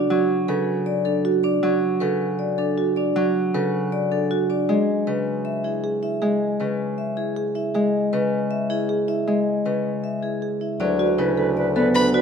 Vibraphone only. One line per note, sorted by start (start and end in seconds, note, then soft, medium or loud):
0.00 0.16 D5 medium
0.48 0.73 B4 medium
0.86 1.11 D5 medium
1.05 1.30 A4 medium
1.43 1.69 D5 medium
2.00 2.26 B4 medium
2.39 2.64 D5 medium
2.58 2.83 A4 medium
2.96 3.21 D5 medium
3.54 3.79 B4 medium
3.92 4.17 D5 medium
4.12 4.36 A4 medium
4.50 4.75 D5 medium
5.07 5.32 B4 medium
5.45 5.70 E5 medium
5.64 5.89 G#4 soft
6.03 6.27 E5 soft
6.60 6.85 B4 soft
6.98 7.23 E5 soft
7.17 7.42 G#4 soft
7.55 7.80 E5 soft
8.13 8.38 B4 medium
8.51 8.76 E5 medium
8.70 8.95 G#4 medium
9.08 9.33 E5 medium
9.65 9.90 B4 soft
10.04 10.29 E5 soft
10.23 10.48 G#4 soft
10.61 10.86 E5 soft
10.80 11.05 D5 medium
11.18 11.43 B4 medium
11.57 11.82 D5 medium
11.76 12.01 A4 medium
12.14 12.22 D5 medium